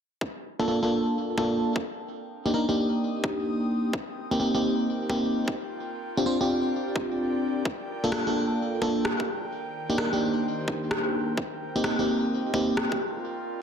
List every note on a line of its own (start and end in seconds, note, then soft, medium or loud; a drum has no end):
0.21 1.84 D4 medium
0.21 kick loud
0.58 0.66 A#3 medium
0.58 0.66 D4 medium
0.58 0.66 F4 medium
0.58 0.66 A4 medium
0.58 13.62 A#4 medium
0.68 0.80 A#3 medium
0.68 0.80 D4 medium
0.68 0.80 F4 medium
0.68 0.80 A4 medium
0.83 1.36 A#3 medium
0.83 1.36 D4 medium
0.83 1.36 F4 medium
0.83 1.36 A4 medium
0.83 13.62 G5 medium
0.95 2.70 F5 medium
1.38 1.83 A#3 medium
1.38 1.83 D4 medium
1.38 1.83 F4 medium
1.38 1.83 A4 medium
1.38 kick medium
1.76 kick medium
1.84 6.43 C4 medium
2.18 5.56 D#6 medium
2.46 2.53 A#3 medium
2.46 2.53 D4 medium
2.46 2.53 D#4 medium
2.46 2.53 G4 medium
2.54 2.66 A#3 medium
2.54 2.66 D4 medium
2.54 2.66 D#4 medium
2.54 2.66 A#4 medium
2.69 3.92 A#3 medium
2.69 3.92 D4 medium
2.69 3.92 D#4 medium
2.69 3.92 G4 medium
3.24 kick loud
3.93 kick loud
4.16 10.15 F4 medium
4.31 4.38 A#3 medium
4.31 4.38 C4 medium
4.31 4.38 D#4 medium
4.31 4.38 G4 medium
4.40 4.52 A#3 medium
4.40 4.52 C4 medium
4.40 4.52 D#4 medium
4.40 4.52 G4 medium
4.54 5.07 A#3 medium
4.54 5.08 C4 medium
4.54 5.08 D#4 medium
4.54 5.08 G4 medium
5.09 5.55 A#3 medium
5.09 5.55 C4 medium
5.09 5.55 D#4 medium
5.09 5.55 G4 medium
5.09 kick loud
5.48 kick loud
6.01 10.15 D5 medium
6.17 6.25 C4 medium
6.17 6.25 D4 medium
6.17 6.25 F4 medium
6.17 6.25 G4 medium
6.26 6.38 C4 medium
6.26 6.38 D4 medium
6.26 6.38 F4 medium
6.26 6.38 C5 medium
6.41 7.64 C4 medium
6.41 7.64 D4 medium
6.41 7.64 F4 medium
6.41 7.64 G4 medium
6.96 kick medium
7.65 kick loud
8.04 8.10 A#3 medium
8.04 8.10 D4 medium
8.04 8.10 F4 medium
8.04 8.10 A4 medium
8.12 8.25 A#3 medium
8.12 cross-stick loud
8.27 8.80 A#3 medium
8.27 8.80 D4 medium
8.27 8.80 F4 medium
8.27 8.80 A4 medium
8.82 9.27 A#3 medium
8.82 9.27 D4 medium
8.82 9.27 F4 medium
8.82 9.27 A4 medium
8.82 kick medium
9.05 cross-stick loud
9.20 kick medium
9.28 12.04 D#3 medium
9.45 12.04 C5 medium
9.90 9.97 A#3 medium
9.90 9.97 D4 medium
9.90 9.97 D#4 medium
9.90 9.97 G4 medium
9.98 10.10 A#3 medium
9.98 10.10 D4 medium
9.98 10.10 D#4 medium
9.98 10.10 A#4 medium
9.98 cross-stick loud
10.13 11.37 A#3 medium
10.13 11.37 D4 medium
10.13 11.37 D#4 medium
10.13 11.37 G4 medium
10.68 kick medium
10.91 cross-stick loud
11.37 13.62 C4 medium
11.37 kick loud
11.60 13.62 F4 medium
11.76 11.82 A#3 medium
11.76 11.82 C4 medium
11.76 11.82 D#4 medium
11.76 11.82 G4 medium
11.76 13.00 D#5 medium
11.84 11.97 A#3 medium
11.84 11.97 C4 medium
11.84 11.97 D#4 medium
11.84 11.97 G4 medium
11.84 cross-stick loud
11.99 12.52 A#3 medium
11.99 12.52 C4 medium
11.99 12.52 D#4 medium
11.99 12.52 G4 medium
12.54 12.99 A#3 medium
12.54 12.99 C4 medium
12.54 12.99 D#4 medium
12.54 12.99 G4 medium
12.54 kick medium
12.77 cross-stick loud
12.92 kick medium
13.31 13.62 D5 medium